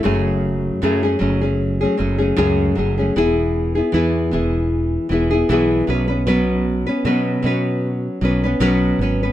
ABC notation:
X:1
M:4/4
L:1/16
Q:"Swing 16ths" 1/4=77
K:E
V:1 name="Nylon-string guitar"
[F,,C,F,A,CG]4 [F,,C,F,A,CG] [F,A,CG] [F,A,CG] [F,A,CG]2 [F,A,CG] [F,A,CG] [F,A,CG] [F,,C,F,A,CG]2 [F,A,CG] [F,A,CG] | [E,B,EG]3 [B,EG] [E,B,EG]2 [E,B,EG]4 [E,B,EG] [B,EG] [E,B,EG]2 [F,B,CB] [B,CB] | [B,,F,B,CB]3 [B,CB] [B,,F,B,CB]2 [F,B,CB]4 [F,B,CB] [B,CB] [B,,F,B,CB]2 [F,B,CB] [B,CB] |]
V:2 name="Fretless electric bass" clef=bass
F,,,4 F,,2 F,,,4 F,,,2 C,,2 F,,,2 | E,,,4 E,,2 E,,,4 E,,,2 B,,,2 B,,,2- | B,,,4 B,,2 B,,4 B,,,2 B,,,2 G,,,2 |]